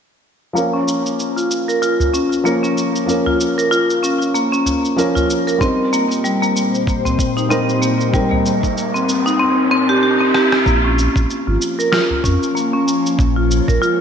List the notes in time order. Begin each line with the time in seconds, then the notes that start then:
0.53 F3 A#3 C#4 A#4, shaker
0.73 C#4
0.88 shaker
1.06 shaker
1.20 shaker
1.36 F4, shaker
1.51 shaker
1.68 A#4, shaker
1.82 F4, shaker
2.00 udu, shaker
2.13 C#4, shaker
2.32 shaker
2.44 F3 A#3 C#4 A#4, shaker
2.63 C#4, shaker
2.78 shaker
2.96 shaker
3.06 F3 A#3 C#4 A#4, shaker
3.26 F4, udu
3.41 shaker
3.58 A#4, shaker
3.71 F4, shaker
3.90 shaker
4.03 C#4, shaker
4.22 shaker
4.34 A#3, shaker
4.52 C#4, shaker
4.66 udu, shaker
4.85 shaker
4.96 F3 A#3 C#4 A#4, shaker
5.15 F4, udu, shaker
5.30 shaker
5.47 A#4, shaker
5.58 A#2 G3 C4 D#4 G4 C5, kick, riser, shaker
5.62 A#4
5.93 A#3, shaker
6.11 shaker
6.24 G3, shaker
6.42 A#3, shaker
6.57 shaker
6.75 shaker
6.87 kick, shaker
7.05 C4, udu, shaker
7.19 kick, shaker
7.37 D#4, shaker
7.49 G3 C4 D#4 A#4, shaker
7.69 shaker
7.82 A#3, shaker
8.01 shaker
8.11 G3 C4 D#4 A#4, kick, shaker
8.31 A#3, udu
8.46 shaker
8.63 kick, shaker
8.77 shaker
8.95 C4, shaker
9.09 shaker
9.26 D#4, shaker
9.40 C4
9.71 C4
9.89 G4
10.03 G4
10.21 C4
10.34 G4, cross-stick
10.52 cross-stick
10.66 A#1 F3 A#3 C#4, kick, shaker
10.84 C#4
10.98 shaker
11.16 A#1, kick, shaker
11.30 shaker
11.47 G#1 F4
11.62 shaker
11.79 A#4, shaker
11.92 F4, snare, shaker
12.10 udu
12.24 F2 C#4, kick, shaker
12.43 shaker
12.55 A#3, shaker
12.73 C#4
12.88 shaker
13.06 shaker
13.19 A#1 G#3, kick, udu, shaker
13.36 F4
13.51 shaker
13.68 A#1 A#4, kick, shaker
13.82 F4, shaker